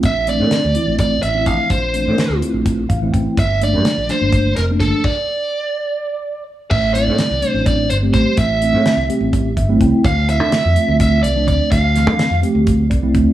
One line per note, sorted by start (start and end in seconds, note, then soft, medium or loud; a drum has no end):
0.03 0.41 A#1 medium
0.03 0.27 E5 medium
0.03 kick medium
0.03 closed hi-hat medium
0.27 0.60 E3 soft
0.27 0.60 A3 soft
0.27 0.60 C4 soft
0.27 0.61 D4 medium
0.27 0.96 D5 medium
0.27 closed hi-hat medium
0.40 0.50 A#2 medium
0.51 snare medium
0.51 closed hi-hat medium
0.65 0.75 D2 medium
0.74 1.15 E3 medium
0.74 1.16 A3 medium
0.74 1.16 C4 medium
0.74 1.16 E4 medium
0.74 closed hi-hat soft
0.87 1.20 A#1 medium
0.99 1.22 D5 medium
0.99 kick medium
0.99 closed hi-hat medium
1.22 1.46 A1 medium
1.22 1.47 E5 medium
1.22 closed hi-hat medium
1.34 1.75 E3 medium
1.34 1.75 A3 medium
1.34 1.75 C4 medium
1.34 1.76 E4 medium
1.46 1.57 A#1 medium
1.46 1.71 F5 medium
1.46 kick medium
1.46 closed hi-hat medium
1.70 2.08 A#1 medium
1.70 2.38 C5 medium
1.70 kick medium
1.70 closed hi-hat medium
1.93 2.26 E3 medium
1.93 2.27 A3 soft
1.93 2.27 C4 soft
1.93 2.27 D4 medium
1.93 closed hi-hat soft
2.07 2.17 A#2 medium
2.18 snare medium
2.18 closed hi-hat medium
2.29 2.41 D2 medium
2.40 2.82 A3 medium
2.40 2.82 C4 medium
2.40 2.82 E4 medium
2.40 2.82 F4 medium
2.40 closed hi-hat soft
2.54 2.87 A#1 medium
2.66 kick medium
2.66 closed hi-hat medium
2.89 3.12 A1 medium
2.89 3.11 F5 medium
2.89 kick medium
2.89 closed hi-hat medium
3.01 3.37 E3 medium
3.01 3.37 A3 medium
3.01 3.37 C4 medium
3.01 3.38 E4 medium
3.13 3.25 A1 medium
3.13 3.35 G5 medium
3.13 kick medium
3.13 closed hi-hat medium
3.37 3.75 G1 medium
3.37 3.60 E5 medium
3.37 kick loud
3.37 closed hi-hat medium
3.61 3.94 F3 medium
3.61 3.94 A3 soft
3.61 3.94 A#3 soft
3.61 3.94 D4 medium
3.61 4.11 D5 medium
3.61 closed hi-hat medium
3.73 3.84 G2 medium
3.85 snare medium
3.85 closed hi-hat medium
3.98 4.08 A#1 medium
4.09 4.49 F3 medium
4.09 4.50 A3 medium
4.09 4.50 A#3 medium
4.09 4.50 D4 medium
4.09 4.56 C5 medium
4.09 snare soft
4.09 closed hi-hat soft
4.21 4.54 G1 medium
4.32 kick medium
4.32 closed hi-hat medium
4.56 4.80 F1 medium
4.56 4.63 A#4 medium
4.56 snare soft
4.56 closed hi-hat medium
4.69 5.05 F3 medium
4.69 5.05 A3 medium
4.69 5.05 A#3 medium
4.69 5.05 D4 medium
4.80 4.91 G1 medium
4.80 5.05 A4 medium
4.80 kick medium
4.80 snare soft
4.80 closed hi-hat medium
5.04 6.43 D5 medium
5.04 kick medium
5.04 crash medium
6.71 7.09 A1 medium
6.71 6.94 E5 medium
6.71 kick loud
6.71 crash medium
6.94 7.27 G3 medium
6.94 7.27 A3 medium
6.94 7.28 C4 medium
6.94 7.28 E4 medium
6.94 7.49 D5 medium
6.94 closed hi-hat medium
7.08 7.18 A2 medium
7.19 snare medium
7.19 closed hi-hat medium
7.31 7.42 C2 medium
7.42 7.83 G3 medium
7.42 7.83 A3 medium
7.42 7.83 C4 medium
7.42 7.83 D4 medium
7.42 closed hi-hat medium
7.49 7.66 C5 medium
7.54 7.87 A1 medium
7.66 7.89 D5 medium
7.66 kick medium
7.66 closed hi-hat medium
7.90 8.13 G1 medium
7.90 7.96 C5 medium
7.90 closed hi-hat medium
8.02 8.43 G3 medium
8.02 8.43 A3 medium
8.02 8.43 C4 medium
8.02 8.43 G4 medium
8.13 8.25 A1 medium
8.13 8.36 C5 medium
8.13 kick medium
8.13 snare soft
8.13 closed hi-hat medium
8.37 8.74 A1 medium
8.37 9.05 E5 medium
8.37 kick loud
8.37 closed hi-hat medium
8.61 8.94 G3 medium
8.61 8.94 A3 medium
8.61 8.95 C4 medium
8.61 8.95 E4 medium
8.61 closed hi-hat medium
8.73 8.84 A2 medium
8.86 snare loud
8.86 closed hi-hat medium
8.97 9.08 C2 medium
9.08 9.49 G3 medium
9.08 9.50 A3 medium
9.08 9.50 C4 medium
9.08 9.50 G4 medium
9.08 closed hi-hat medium
9.21 9.54 A1 medium
9.33 kick medium
9.33 closed hi-hat medium
9.57 9.80 G1 medium
9.57 9.79 E5 medium
9.57 kick medium
9.57 closed hi-hat medium
9.69 10.04 G3 medium
9.69 10.05 A3 medium
9.69 10.05 C4 medium
9.69 10.05 E4 loud
9.80 9.92 C#2 medium
9.80 10.03 G5 medium
9.80 kick medium
9.80 closed hi-hat soft
10.04 10.40 D2 medium
10.04 10.29 F5 medium
10.04 kick loud
10.04 closed hi-hat medium
10.28 10.61 F3 medium
10.28 10.61 A3 medium
10.28 10.61 C4 medium
10.28 10.62 E4 medium
10.28 10.97 E5 medium
10.28 closed hi-hat medium
10.40 10.51 D3 medium
10.52 snare medium
10.52 closed hi-hat medium
10.65 10.76 F2 medium
10.75 11.17 F3 medium
10.75 11.17 A3 medium
10.75 11.17 C4 medium
10.75 11.17 F4 medium
10.75 closed hi-hat medium
10.88 11.21 D2 medium
11.00 11.22 E5 medium
11.00 kick medium
11.00 closed hi-hat medium
11.23 11.48 C2 medium
11.23 11.47 D5 medium
11.23 closed hi-hat medium
11.35 11.76 F3 medium
11.35 11.76 A3 medium
11.35 11.76 C4 medium
11.35 11.77 D4 medium
11.48 11.59 D2 medium
11.48 11.71 D5 medium
11.48 kick medium
11.48 closed hi-hat medium
11.72 12.07 D2 medium
11.72 12.39 F5 medium
11.72 kick loud
11.72 closed hi-hat medium
11.95 12.28 E3 medium
11.95 12.28 F3 medium
11.95 12.28 A3 medium
11.95 12.28 C4 medium
11.95 snare soft
11.95 closed hi-hat medium
12.07 12.18 D3 medium
12.19 snare loud
12.19 closed hi-hat medium
12.30 12.42 F2 medium
12.42 12.83 F3 medium
12.42 12.84 A3 medium
12.42 12.84 C4 medium
12.42 12.84 G4 medium
12.42 closed hi-hat medium
12.55 12.88 D2 medium
12.67 kick medium
12.67 closed hi-hat medium
12.90 13.15 C2 medium
12.90 13.33 D5 medium
12.90 kick medium
12.90 closed hi-hat medium
13.02 13.33 F3 medium
13.02 13.33 A3 medium
13.02 13.33 C4 medium
13.02 13.33 E4 medium
13.15 13.26 D2 medium
13.15 kick medium
13.15 closed hi-hat medium